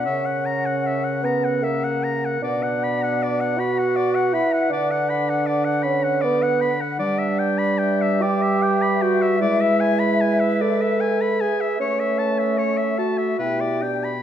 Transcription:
<<
  \new Staff \with { instrumentName = "Flute" } { \time 3/4 \key b \minor \tempo 4 = 77 fis''2. | fis''2.~ | fis''2.~ | \key e \dorian fis''8 r8 e''2~ |
e''2. | e''2 g''8 r8 | }
  \new Staff \with { instrumentName = "Oboe" } { \time 3/4 \key b \minor e''16 fis''16 ais''16 fis''16 e''16 fis''16 ais''16 fis''16 e''16 fis''16 ais''16 fis''16 | d''16 fis''16 b''16 fis''16 d''16 fis''16 b''16 fis''16 d''16 fis''16 b''16 fis''16 | d''16 fis''16 b''16 fis''16 d''16 fis''16 b''16 fis''16 d''16 fis''16 b''16 fis''16 | \key e \dorian d''16 e''16 g''16 b''16 g''16 e''16 d''16 e''16 g''16 b''16 g''16 e''16 |
d''16 e''16 gis''16 b''16 gis''16 e''16 d''16 e''16 gis''16 b''16 gis''16 e''16 | cis''16 e''16 a''16 e''16 cis''16 e''16 a''16 e''16 b'16 d''16 g''16 b''16 | }
  \new Staff \with { instrumentName = "Clarinet" } { \time 3/4 \key b \minor ais'2. | b'2.~ | b'2~ b'8 r8 | \key e \dorian b'2.~ |
b'2.~ | b'4 a'8 r8 g'4 | }
  \new Staff \with { instrumentName = "Bassoon" } { \time 3/4 \key b \minor cis'4. b8 ais4 | d'4. fis'4 e'8 | d'4. cis'8 b8 r8 | \key e \dorian d'4. g'4 fis'8 |
e'4. a'4 gis'8 | cis'4. fis'8 e'8 d'8 | }
  \new Staff \with { instrumentName = "French horn" } { \clef bass \time 3/4 \key b \minor cis2. | b,2~ b,8 r8 | d2. | \key e \dorian g2. |
gis2~ gis8 r8 | a2 b,4 | }
>>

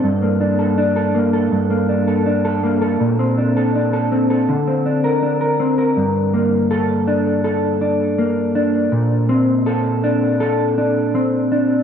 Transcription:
\new Staff \with { instrumentName = "Clean electric guitar" } { \time 4/4 \key g \minor \tempo 4 = 81 g,16 bes16 d'16 a'16 d'16 a'16 bes16 a'16 g,16 bes16 d'16 a'16 d'16 a'16 bes16 a'16 | bes,16 c'16 d'16 a'16 d'16 a'16 c'16 a'16 d16 c'16 d'16 bes'16 d'16 bes'16 c'16 bes'16 | g,8 bes8 a'8 d'8 a'8 d'8 bes8 d'8 | bes,8 c'8 a'8 d'8 a'8 d'8 c'8 d'8 | }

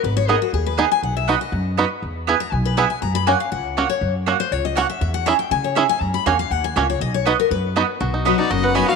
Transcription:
<<
  \new Staff \with { instrumentName = "Fiddle" } { \time 4/4 \key b \major \tempo 4 = 241 r1 | r1 | r1 | r1 |
r1 | r1 | r1 | r1 |
r4. d''8 dis''8 fis''8 gis''8 eis''8 | }
  \new Staff \with { instrumentName = "Steel-string acoustic guitar" } { \time 4/4 \key b \major << { b'8 cis''8 ais'8 fis'8 gis'8 b'8 dis''8 gis''8 | fis''8 e''8 dis''8 dis''2~ dis''16 r16 | r4. ais''8 gis''8 b'8 e''8 gis''8 | ais''8 b''8 gis''8 eis''8 fis''4. cis''8~ |
cis''8 r4 c''8 cis''8 dis''8 fis''8 e''8 | e''8 fis''8 ais''8 g''8 gis''8 cis''8 e''8 gis''8 | ais''8 b''8 gis''8 eis''8 fis''8 gis''8 e''8 cis''8 | dis''8 cis''8 b'8 ais'8 b'4.~ b'16 r16 |
r4 <fis b dis' fis'>8 <dis' fis'>8 r4 <fis b dis' fis'>8 <dis' fis'>8 | } \\ { r1 | r1 | r1 | r1 |
r1 | r1 | r1 | r1 |
b,2 fis,2 | } >> }
  \new Staff \with { instrumentName = "Mandolin" } { \time 4/4 \key b \major r4 <b gis' dis'' gis''>8 r4. <b gis' dis'' gis''>8 r8 | r4 <b fis' dis'' b''>8 r4. <b fis' dis'' b''>8 r8 | r4 <b e' b' gis''>8 r4. <b e' b' gis''>8 r8 | r4 <ais fis' cis'' fis''>8 r4. <ais fis' cis'' fis''>8 r8 |
r4 <ais fis' cis'' fis''>8 r4. <ais fis' cis'' fis''>8 r8 | r4 <cis' gis' e'' gis''>8 r4. <cis' gis' e'' gis''>8 r8 | r4 <ais fis' cis'' gis''>8 r4. <ais fis' cis'' gis''>8 r8 | r4 <b fis' dis'' b''>8 r4. <b fis' dis'' b''>8 r8 |
r4 <b fis' dis'' b''>8 r4. <b fis' dis'' b''>8 r8 | }
  \new Staff \with { instrumentName = "Five-string banjo" } { \time 4/4 \key b \major r4 <b dis' gis'>8 r4. <b dis' gis'>8 r8 | r4 <b dis' fis'>8 r4. <b dis' fis'>8 r8 | r4 <b e' gis'>8 r4. <b e' gis'>8 r8 | r4 <cis' fis'>8 r4. <cis' fis'>8 r8 |
r4 <cis' fis'>8 r4. <cis' fis'>8 r8 | r4 <cis' e' gis'>8 r4. <cis' e' gis'>8 r8 | r4 <cis' fis'>8 r4. <cis' fis'>8 r8 | r4 <b dis' fis'>8 r4. <b dis' fis'>8 r8 |
fis'8 dis'8 b8 dis'8 fis'8 b'8 b8 fis'8 | }
  \new Staff \with { instrumentName = "Upright bass" } { \clef bass \time 4/4 \key b \major gis,,2 dis,2 | b,,2 fis,2 | e,2 b,,2 | fis,2 cis,2 |
fis,2 cis,2 | e,2 cis2 | fis,4 e,4 dis,4 cis,4 | b,,2 fis,2 |
b,,2 fis,,2 | }
>>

